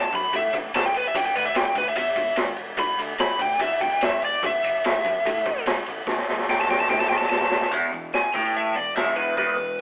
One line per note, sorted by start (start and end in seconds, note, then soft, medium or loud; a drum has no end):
0.00 0.13 A5 medium
0.13 0.25 F#2 medium
0.13 0.34 B5 loud
0.13 kick medium
0.13 ride medium
0.33 0.46 A2 medium
0.33 0.54 E5 loud
0.33 kick medium
0.33 ride medium
0.53 0.66 A1 loud
0.53 kick medium
0.53 ride medium
0.74 0.86 C#2 medium
0.74 0.84 A5 loud
0.74 snare loud
0.74 ride loud
0.86 0.95 G5 medium
0.93 1.06 A1 medium
0.93 ride medium
0.97 1.06 B4 loud
1.08 1.16 E5 loud
1.15 1.28 E1 loud
1.15 1.25 G5 medium
1.15 kick loud
1.15 ride loud
1.26 1.35 G5 loud
1.35 1.48 D2 medium
1.35 1.45 B4 medium
1.35 ride medium
1.46 1.55 E5 medium
1.55 1.68 E1 medium
1.55 1.65 G5 medium
1.55 snare loud
1.55 ride medium
1.66 1.76 G5 medium
1.75 1.89 D2 medium
1.75 1.87 B4 loud
1.75 kick medium
1.75 ride medium
1.88 1.96 E5 medium
1.95 2.09 E2 medium
1.95 2.37 E5 loud
1.95 kick medium
1.95 ride loud
2.15 2.29 E1 medium
2.15 kick medium
2.15 ride medium
2.36 2.51 G#1 loud
2.36 snare loud
2.36 ride loud
2.56 2.71 E1 medium
2.56 ride medium
2.77 2.91 E1 medium
2.77 2.99 B5 loud
2.77 kick loud
2.77 ride loud
2.98 3.11 D2 medium
2.98 ride medium
3.18 3.32 E1 medium
3.18 3.40 B5 loud
3.18 snare loud
3.18 ride medium
3.39 3.52 D2 medium
3.39 3.61 G5 medium
3.39 kick medium
3.39 ride medium
3.59 3.73 E2 loud
3.59 3.81 E5 loud
3.59 kick medium
3.59 ride medium
3.80 3.93 E1 loud
3.80 4.01 G5 medium
3.80 kick medium
3.80 ride medium
4.01 4.16 G#1 loud
4.01 4.23 E5 medium
4.01 snare loud
4.01 ride loud
4.22 4.35 E1 medium
4.22 4.43 D5 loud
4.22 ride medium
4.43 4.56 A1 loud
4.43 5.64 E5 loud
4.43 kick loud
4.43 ride medium
4.63 4.76 F#1 medium
4.63 ride medium
4.84 4.98 A1 loud
4.84 snare loud
4.84 ride medium
5.04 5.17 F#2 medium
5.04 kick medium
5.04 ride medium
5.25 5.38 A2 loud
5.25 kick medium
5.25 ride loud
5.46 5.59 A1 loud
5.46 kick medium
5.46 ride medium
5.66 5.79 C#2 loud
5.66 snare loud
5.66 ride loud
5.86 6.00 A1 loud
5.86 ride medium
6.07 6.20 A1 medium
6.07 kick loud
6.07 snare medium
6.18 snare medium
6.28 6.41 F#1 medium
6.28 snare medium
6.39 snare medium
6.49 6.62 A1 medium
6.49 6.59 G5 loud
6.49 snare medium
6.60 6.70 A5 medium
6.60 snare medium
6.68 6.81 F#2 loud
6.68 6.80 G5 loud
6.68 snare medium
6.80 6.90 A5 medium
6.80 snare medium
6.89 7.02 A2 loud
6.89 7.00 G5 loud
6.89 kick medium
6.89 snare medium
7.00 7.09 A5 medium
7.00 snare medium
7.10 7.23 A1 loud
7.10 7.18 G5 medium
7.10 snare medium
7.18 7.29 A5 medium
7.18 snare medium
7.30 7.44 C#2 loud
7.30 7.70 A5 loud
7.30 snare medium
7.41 snare medium
7.51 7.64 A1 loud
7.51 snare medium
7.61 snare loud
7.71 7.91 E1 medium
7.71 7.92 E2 medium
7.71 kick medium
7.71 open hi-hat medium
7.92 8.12 E1 medium
7.92 8.10 E2 medium
7.92 open hi-hat soft
8.13 8.35 G#5 medium
8.13 snare medium
8.13 open hi-hat medium
8.34 8.73 A1 medium
8.34 8.76 A2 medium
8.34 8.56 G5 medium
8.34 kick medium
8.34 open hi-hat soft
8.55 8.77 E5 medium
8.55 open hi-hat medium
8.75 8.95 E1 medium
8.75 8.92 E2 medium
8.75 8.96 D5 medium
8.75 open hi-hat soft
8.96 9.35 E1 medium
8.96 9.37 E2 medium
8.96 9.18 E5 medium
8.96 snare loud
8.96 open hi-hat medium
9.16 9.37 B4 medium
9.16 open hi-hat soft
9.37 9.57 E1 medium
9.37 9.56 E2 medium
9.37 9.81 B4 medium
9.37 kick medium
9.37 open hi-hat medium
9.57 9.79 E1 medium
9.57 9.75 E2 medium
9.57 open hi-hat soft